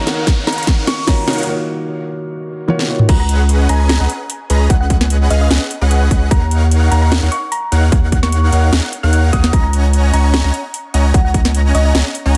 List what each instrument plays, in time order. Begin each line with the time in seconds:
Already playing: felt piano D#3 A#3 F#4 C#5, supersaw synth D#4 A#4 C#5 F5 F#5, riser
0.07 snare, closed hi-hat
0.27 kick, snare, closed hi-hat
0.47 supersaw synth D#4 A#4 C#5 F5 F#5, synth pluck A#5, snare, closed hi-hat
0.53 closed hi-hat
0.58 synth pluck A#5, closed hi-hat
0.63 closed hi-hat
0.67 kick, snare, closed hi-hat
0.78 supersaw synth D#4 A#4 C#5 F5 F#5
0.87 synth pluck C#6, snare, closed hi-hat
1.07 felt piano D#3 A#3 F4 F#4 C#5, synth pluck A#5, kick, snare, closed hi-hat
1.27 felt piano D#3 A#3 F4 F#4 C#5, supersaw synth D#4 A#4 C#5 F5 F#5, snare, closed hi-hat
1.33 closed hi-hat
1.38 closed hi-hat
1.43 felt piano D#3 A#3, closed hi-hat
1.48 felt piano F4 F#4 C#5
2.68 felt piano D#3 A#3 F4 F#4 C#5, high tom
2.79 snare
2.88 felt piano D#3 A#3 F4 F#4 C#5
2.99 mid tom
3.09 sub bass C#2, supersaw synth C#4 G#4 B4 D#5 F#5, digital synth lead F#5, synth pluck A#5, kick, closed hi-hat, crash
3.20 synth pluck A#5
3.29 closed hi-hat
3.49 closed hi-hat
3.69 sub bass C#2, supersaw synth C#4 G#4 B4 D#5 G#5, digital synth lead G#5, synth pluck A#5, closed hi-hat
3.80 synth pluck A#5
3.89 synth pluck A#5, snare, closed hi-hat
4.00 sub bass C#2, supersaw synth C#4 G#4 B4 D#5 F#5, digital synth lead F#5, synth pluck A#5
4.10 closed hi-hat
4.30 closed hi-hat
4.50 sub bass C#2, supersaw synth C#4 G#4 B4 D#5 A#5, digital synth lead A#5, closed hi-hat
4.70 sub bass C#2, supersaw synth C#4 G#4 B4 D#5 F#5, digital synth lead F#5, synth pluck F#5, kick, closed hi-hat
4.81 synth pluck F#5
4.90 kick, closed hi-hat
5.01 snare
5.10 closed hi-hat
5.30 sub bass C#2, supersaw synth C#4 G#4 B4 D#5 F5, synth pluck D#5, digital synth lead F5, closed hi-hat
5.41 synth pluck D#5
5.51 sub bass C#2, supersaw synth C#4 G#4 B4 D#5 F#5, digital synth lead F#5, snare, closed hi-hat
5.71 closed hi-hat
5.81 sub bass C#2, supersaw synth C#4 G#4 B4 D#5 F#5, digital synth lead F#5
5.91 closed hi-hat
6.11 sub bass C#2, supersaw synth C#4 G#4 B4 D#5 F#5, digital synth lead F#5, kick, closed hi-hat
6.31 sub bass D#2, supersaw synth D#4 A#4 C#5 F5 F#5, digital synth lead F#5, synth pluck A#5, kick, closed hi-hat
6.42 synth pluck A#5
6.51 closed hi-hat
6.71 closed hi-hat
6.91 sub bass D#2, supersaw synth D#4 A#4 C#5 F5 F#5, digital synth lead F#5, synth pluck A#5, closed hi-hat
7.02 synth pluck A#5
7.12 snare, closed hi-hat
7.22 sub bass D#2, supersaw synth D#4 A#4 C#5 F5 F#5, digital synth lead F#5
7.32 synth pluck C#6, closed hi-hat
7.52 synth pluck A#5, closed hi-hat
7.72 sub bass D#2, supersaw synth D#4 A#4 C#5 F5 F#5, digital synth lead F#5, closed hi-hat
7.92 sub bass D#2, supersaw synth D#4 A#4 C#5 F5 F#5, digital synth lead F#5, kick, closed hi-hat
8.12 kick, closed hi-hat
8.23 synth pluck C#6, snare
8.32 closed hi-hat
8.52 sub bass D#2, supersaw synth D#4 A#4 C#5 F5 F#5, digital synth lead F#5, closed hi-hat
8.73 sub bass D#2, supersaw synth D#4 A#4 C#5 F5 F#5, digital synth lead F#5, snare, closed hi-hat
8.93 closed hi-hat
9.03 sub bass D#2, supersaw synth D#4 A#4 C#5 F5 F#5, digital synth lead F#5, synth pluck F#6
9.13 closed hi-hat
9.33 sub bass D#2, supersaw synth D#4 A#4 C#5 F5 F#5, digital synth lead F#5, synth pluck D#6, kick, closed hi-hat
9.44 snare
9.53 sub bass C#2, supersaw synth C#4 C#5 D#5 F#5 G#5 A#5, synth pluck A#5, digital synth lead A#5, kick, closed hi-hat
9.64 synth pluck A#5
9.73 closed hi-hat
9.93 closed hi-hat
10.13 sub bass C#2, supersaw synth C#4 C#5 D#5 F#5 G#5 C#6, synth pluck A#5, digital synth lead C#6, closed hi-hat
10.24 synth pluck A#5
10.33 synth pluck A#5, snare, closed hi-hat
10.44 sub bass C#2, supersaw synth C#4 C#5 D#5 F#5 G#5 A#5, synth pluck A#5, digital synth lead A#5
10.54 closed hi-hat
10.74 closed hi-hat
10.94 sub bass C#2, supersaw synth C#4 C#5 D#5 F#5 G#5 A#5, digital synth lead A#5, closed hi-hat
11.14 sub bass C#2, supersaw synth C#4 C#5 D#5 F#5 G#5 A#5, synth pluck F#5, digital synth lead A#5, kick, closed hi-hat
11.25 synth pluck F#5
11.34 kick, closed hi-hat
11.45 snare
11.55 closed hi-hat
11.75 sub bass C#2, supersaw synth C#4 C#5 D#5 F#5 G#5 A#5, synth pluck D#5, digital synth lead A#5, closed hi-hat
11.85 synth pluck D#5
11.95 sub bass C#2, supersaw synth C#4 C#5 D#5 F#5 G#5 A#5, digital synth lead A#5, snare, closed hi-hat
12.15 closed hi-hat
12.26 sub bass C#2, supersaw synth C#4 C#5 D#5 F#5 G#5 A#5, digital synth lead A#5